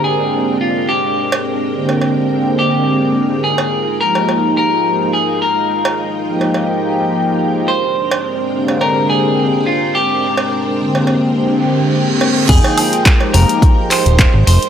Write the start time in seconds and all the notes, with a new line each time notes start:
Already playing: D3 G#3 A#3 C4 D4 G4 A#4 G5
0.04 G#4
0.32 D3 G#3 A#3 C4 G4
0.47 D3 G#3 A#3 C4 G4
0.61 F4
0.89 G4
1.32 cowbell
1.73 D3 G#3 A#3 C4 G4
1.89 cowbell
2.01 cowbell
2.29 D3 G#3 A#3 C4 G4
2.59 G4
3.01 D3 G#3 A#3 C4 G4
3.44 D#4 F4 G#4
3.58 cowbell
3.99 F3 G#3 A#3 D#4 G4 A#4
4.15 cowbell
4.29 cowbell
4.57 A#4
4.84 F3 G#3 A#3 D#4 G4
5.00 F3 G#3 A#3 D#4 G4
5.13 G#4
5.42 A#4
5.85 cowbell
6.26 F3 G#3 A#3 D#4 G4
6.41 cowbell
6.54 cowbell
6.82 F3 G#3 A#3 D#4 G4
7.67 G#3 C4 D4 A#4 C5 G5
8.11 cowbell
8.52 D3 G#3 A#3 C4 G4
8.68 cowbell
8.81 A#4, cowbell
9.10 G#4
9.37 D3 G#3 A#3 C4 G4
9.53 D3 G#3 A#3 C4 G4
9.66 F4
9.95 G4
10.37 cowbell
10.79 D3 G#3 A#3 C4 G4
10.95 cowbell
11.07 cowbell
11.35 D3 G#3 A#3 C4 G4, reverse cymbal
12.07 D3 G#3 A#3 C4 G4
12.21 cowbell
12.49 F1 F3 G#3 A#3 D#4 G#4 A#4 G5, kick, closed hi-hat, crash
12.64 cowbell
12.78 open hi-hat, high woodblock
12.93 closed hi-hat
13.05 F3 G#3 A#3 D#4 G4, kick, clap, closed hi-hat
13.21 cowbell
13.33 F1 A#4, open hi-hat, cowbell
13.49 closed hi-hat
13.62 kick, closed hi-hat
13.90 F3 G#3 A#3 D#4 G4 C5, clap, open hi-hat
14.05 D#1 F3 G#3 A#3 D#4 G4, closed hi-hat
14.19 kick, clap, closed hi-hat
14.34 G#1
14.47 F1 C5, open hi-hat
14.62 closed hi-hat